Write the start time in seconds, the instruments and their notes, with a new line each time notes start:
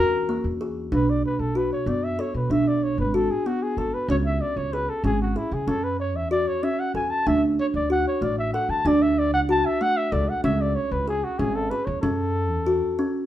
Already playing: upright bass E2, kalimba F#4, flugelhorn A#4
0.29 kalimba A#3
0.44 upright bass E2
0.61 kalimba G#4
0.92 upright bass B1, kalimba D4, flugelhorn B4
1.10 flugelhorn D5
1.25 flugelhorn B4
1.39 upright bass B1, flugelhorn A4
1.55 kalimba F#4, flugelhorn B4
1.72 flugelhorn C#5
1.86 upright bass F#2, kalimba B3, flugelhorn D5
2.04 flugelhorn E5
2.19 kalimba A4, flugelhorn C#5
2.34 upright bass B2, flugelhorn B4
2.50 upright bass B1, kalimba D4, flugelhorn E5
2.67 flugelhorn D5
2.84 flugelhorn C#5
2.98 upright bass G#1, flugelhorn B4
3.14 kalimba F#4, flugelhorn A4
3.30 flugelhorn G#4
3.46 kalimba B3, flugelhorn F#4
3.62 flugelhorn G#4
3.77 upright bass G#1, flugelhorn A4, kalimba A4
3.94 flugelhorn B4
4.08 upright bass C#2, kalimba C#4, flugelhorn C#5
4.26 flugelhorn E5
4.41 flugelhorn D5
4.56 upright bass C#2, flugelhorn C#5
4.73 kalimba G#4, flugelhorn B4
4.89 flugelhorn A4
5.04 upright bass G#1, kalimba C#4, flugelhorn G#4
5.22 flugelhorn F#4
5.36 flugelhorn E4, kalimba G#4
5.51 upright bass C#3, flugelhorn G#4
5.67 upright bass F#2, kalimba C#4, flugelhorn A4
5.83 flugelhorn B4
6.00 flugelhorn C#5
6.15 upright bass E2, flugelhorn E5
6.31 kalimba F#4, flugelhorn D5
6.48 flugelhorn C#5
6.63 kalimba C#4, flugelhorn E5
6.79 flugelhorn F#5
6.94 upright bass E2, kalimba A4, flugelhorn G#5
7.10 flugelhorn A5
7.27 upright bass D2, kalimba D4, flugelhorn E5
7.60 flugelhorn C#5
7.74 upright bass D2, flugelhorn D5
7.90 kalimba F#4, flugelhorn F#5
8.07 flugelhorn C#5
8.21 upright bass A1, kalimba A3, flugelhorn D5
8.38 flugelhorn E5
8.53 kalimba A4, flugelhorn F#5
8.69 upright bass D3, flugelhorn A5
8.85 upright bass D2, kalimba D4, flugelhorn D5
9.02 flugelhorn E5
9.18 flugelhorn D5
9.32 upright bass C#2, flugelhorn F#5
9.49 kalimba F#4, flugelhorn A5
9.66 flugelhorn E5
9.81 kalimba A3, flugelhorn F#5
9.97 flugelhorn E5
10.12 upright bass C#2, kalimba A4, flugelhorn D5
10.29 flugelhorn F#5
10.44 upright bass C#2, kalimba C#4, flugelhorn E5
10.61 flugelhorn D5
10.75 flugelhorn C#5
10.91 upright bass C#2, flugelhorn B4
11.08 kalimba G#4, flugelhorn G#4
11.24 flugelhorn F#4
11.39 upright bass G#1, kalimba C#4, flugelhorn G#4
11.55 flugelhorn A4
11.70 kalimba G#4, flugelhorn B4
11.85 upright bass E2, flugelhorn C#5
12.01 upright bass F#2, kalimba C#4, flugelhorn A4
12.50 upright bass E2
12.66 kalimba F#4
12.99 kalimba C#4